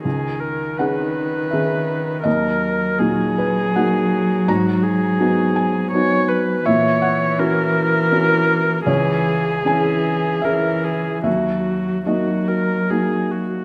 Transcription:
<<
  \new Staff \with { instrumentName = "Viola" } { \time 3/4 \key dis \phrygian \tempo 4 = 81 gis'8 ais'8 b'2 | ais'4 gis'2 | fis'8 gis'4. cis''8 b'8 | cis''4 ais'2 |
gis'2 ais'8 gis'8 | fis'4 fis'8 ais'8 gis'8 fis'8 | }
  \new Staff \with { instrumentName = "Felt piano" } { \time 3/4 \key dis \phrygian << { r4 fis''4 e''4 | dis''4. b'8 fis''4 | ais''4. gis''4. | e''8 fis''4. r4 |
cis''4 gis''4 e''4 | e''4 dis''4. r8 | } \\ { cis,4 <cis' dis' gis'>4 <dis cis' gis'>4 | dis,4 <ais, dis' fis'>4 <ais dis' fis'>4 | gis,4 <b dis' fis'>4 <b dis' fis'>4 | ais,4 <cis' e' fis'>4 <cis' e' fis'>4 |
cis,4 <cis' e' gis'>4 <cis' e' gis'>4 | dis,4 <ais dis' fis'>4 <ais dis' fis'>4 | } >> }
  \new Staff \with { instrumentName = "Cello" } { \clef bass \time 3/4 \key dis \phrygian dis2. | fis2.~ | fis2. | e2. |
e4 e4 e4 | fis4 fis4.~ fis16 r16 | }
>>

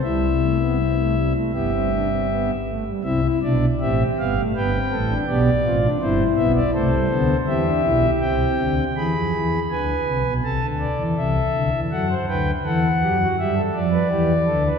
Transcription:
<<
  \new Staff \with { instrumentName = "Pipe organ" } { \time 4/4 \key c \major \tempo 4 = 81 << { e''2 e''4. r8 | e''8 d''8 e''8 f''8 g''4 d''4 | c''8 e''16 d''16 c''4 e''4 g''4 | b''4 gis''4 a''8 d''8 e''4 |
fis''8 g''8 fis''4 e''8 d''4. | } \\ { e'2 g'4. r8 | e'4 g'4 b'8 a'8 g'8 f'8 | e'4 a'4 g'2 | gis'4 b'4 a'2 |
a'16 c''16 b'8 a'8 g'16 fis'16 g'16 a'8 b'16 g'8 a'16 b'16 | } >> }
  \new Staff \with { instrumentName = "Pipe organ" } { \clef bass \time 4/4 \key c \major << { g8 a16 b16 c'16 a16 g16 a16 b16 c'16 d'16 c'16 b8 a16 g16 | c'16 e'16 d'8 c'8 b16 a16 b16 c'8 d'16 b8 c'16 d'16 | c'8 b8 a16 g16 b8 c'16 d'16 e'8 c'4 | r1 |
r1 | } \\ { <c, c>2 <g,, g,>4. r8 | <c, c>8 <b,, b,>8 <a,, a,>8 <g,, g,>8 <g,, g,>8 <a,, a,>8 <b,, b,>8 <a,, a,>8 | <g,, g,>8 <b,, b,>8 <c, c>8 <d, d>8 <e, e>8 <b,, b,>8 <c, c>8 <d, d>8 | <e, e>16 <f, f>16 <e, e>8 <d, d>8 <c, c>16 <b,, b,>16 <c, c>16 <d, d>8 <e, e>16 <c, c>8 <d, d>16 <e, e>16 |
<fis, fis>8 <d, d>8 <e, e>8 <fis, fis>8 <g, g>8 <f, f>8 <e, e>8 <d, d>8 | } >> }
>>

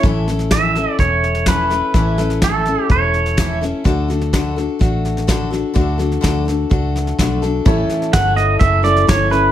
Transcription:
<<
  \new Staff \with { instrumentName = "Pedal steel guitar" } { \time 4/4 \key a \mixolydian \tempo 4 = 126 r4 e''4 cis''4 b'4~ | b'4 a'4 cis''4. r8 | r1 | r1 |
r4 fis''8 dis''8 e''8 d''8 cis''8 b'8 | }
  \new Staff \with { instrumentName = "Upright piano" } { \time 4/4 \key a \mixolydian r1 | r1 | r1 | r1 |
<e' a' cis''>1 | }
  \new Staff \with { instrumentName = "Steel-string acoustic guitar" } { \time 4/4 \key a \mixolydian <a, e a cis' e' a'>8 <a cis' e' a'>8 <a, e a cis' e' a'>8 <a cis' e' a'>8 <a cis' e' a'>4 <a, e a cis' e' a'>8 <a cis' e' a'>8 | <a, e a cis' e' a'>8 <a cis' e' a'>8 <a, e a cis' e' a'>8 <a cis' e' a'>8 <a cis' e' a'>4 <a, e a cis' e' a'>8 <a cis' e' a'>8 | <d a d' fis' a'>8 <d' fis' a'>8 <d a d' fis' a'>8 <d' fis' a'>8 <a d' fis' a'>4 <d a d' fis' a'>8 <d' fis' a'>8 | <d a d' fis' a'>8 <d' fis' a'>8 <d a d' fis' a'>8 <d' fis' a'>8 <a d' fis' a'>4 <d a d' fis' a'>8 <d' fis' a'>8 |
<a, e a cis' e' a'>4 <a cis' e' a'>4 <a cis' e' a'>8 <a cis' e' a'>8 <a cis' e' a'>8 <a cis' e' a'>8 | }
  \new Staff \with { instrumentName = "Fingered electric bass" } { \clef bass \time 4/4 \key a \mixolydian a,,2 e,,2 | a,,2 e,,2 | d,2 a,,2 | d,4 d,4 cis,4 b,,4 |
a,,8 r8 g,,4 fis,,4 g,,4 | }
  \new DrumStaff \with { instrumentName = "Drums" } \drummode { \time 4/4 <bd sn>8 sn16 sn16 <hhp bd sn>8 sn8 <bd sn>8 sn16 sn16 <hhp bd sn>8 sn8 | <bd sn>8 sn16 sn16 <hhp bd sn>8 sn8 <bd sn>8 sn16 sn16 <hhp bd sn>8 sn8 | <bd sn>8 sn16 sn16 <hhp bd sn>8 sn8 <bd sn>8 sn16 sn16 <hhp bd sn>8 sn8 | <bd sn>8 sn16 sn16 <hhp bd sn>8 sn8 <bd sn>8 sn16 sn16 <hhp bd sn>8 sn8 |
<bd sn>8 sn16 sn16 <hhp bd sn>8 sn8 <bd sn>8 sn16 sn16 <hhp bd sn>8 sn8 | }
>>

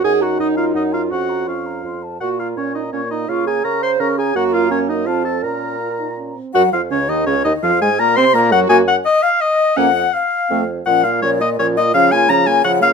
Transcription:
<<
  \new Staff \with { instrumentName = "Flute" } { \time 3/4 \key bes \minor \tempo 4 = 167 ges''8 bes''8 ges''8 bes''8 ges''8 bes''8 | des'''8 bes''8 des'''8 bes''8 c'''8 a''8 | des'''8 bes''8 des'''8 bes''8 des'''8 bes''8 | des'''8 bes''8 des'''8 bes''8 des'''8 bes''8 |
bes''2 a''4 | bes''2~ bes''8 r8 | ges''8 f''8 des''8 ees''8 des''8 ees''8 | f''8 aes''8 bes''8 c'''8 bes''8 ges''8 |
aes''8 ges''8 ees''8 f''8 ees''4 | ges''4 f''4. r8 | ges''8 f''8 des''8 ees''8 des''8 ees''8 | f''8 aes''8 bes''8 aes''8 ges''8 f''8 | }
  \new Staff \with { instrumentName = "Oboe" } { \time 3/4 \key bes \minor aes''8 ges''8 ees''8 f''8 ees''8 f''8 | ges''4 f''4. r8 | ges''8 f''8 des''8 ees''8 des''8 ees''8 | f''8 aes''8 bes''8 c'''8 bes''8 aes''8 |
ges''8 f''8 des''8 ees''8 f''8 a''8 | bes''2 r4 | ges''8 f''8 des''8 ees''8 des''8 ees''8 | f''8 aes''8 bes''8 c'''8 bes''8 ges''8 |
aes''8 ges''8 ees''8 f''8 ees''4 | ges''4 f''4. r8 | ges''8 f''8 des''8 ees''8 des''8 ees''8 | f''8 aes''8 bes''8 aes''8 ges''8 f''8 | }
  \new Staff \with { instrumentName = "Clarinet" } { \time 3/4 \key bes \minor aes'8 ges'8 ees'8 f'8 ees'8 f'8 | ges'4 f'4. r8 | ges'8 f'8 des'8 ees'8 des'8 ees'8 | f'8 aes'8 bes'8 c''8 bes'8 aes'8 |
ges'8 f'8 des'8 ees'8 f'8 a'8 | bes'2 r4 | ges'8 f'8 des'8 ees'8 des'8 ees'8 | f'8 aes'8 bes'8 c''8 bes'8 ges'8 |
ges'8 r2 r8 | des'8 r4. c'8 r8 | des'8 f'8 des'8 f'8 des'8 f'8 | des'8 f'8 des'8 f'8 des'8 f'8 | }
  \new Staff \with { instrumentName = "French horn" } { \time 3/4 \key bes \minor ees'2. | des'2~ des'8 r8 | bes4 des'4 bes4 | bes4 des'4 des'4 |
bes2 c'4 | des'4 f'8 ees'8 des'8 c'8 | ges8 f8 des8 ees8 des8 ees8 | f8 aes8 bes8 c'8 bes8 ges8 |
bes8 r2 r8 | bes8 r4. a8 r8 | f8 bes8 f8 bes8 f8 bes8 | f8 bes8 f8 bes8 f8 bes8 | }
  \new Staff \with { instrumentName = "Bassoon" } { \clef bass \time 3/4 \key bes \minor ges,4 ges,4 ges,4 | f,4 f,4 f,4 | bes,4 bes,4 bes,4 | des4 des4 des4 |
ges,2 f,4 | bes,2~ bes,8 r8 | ges,8 f,8 des,8 ees,8 des,8 ees,8 | f,8 aes,8 bes,8 c8 bes,8 ges,8 |
ges,4 r2 | f,4 r4 f,4 | bes,4 bes,4 bes,4 | des4 des4 des4 | }
>>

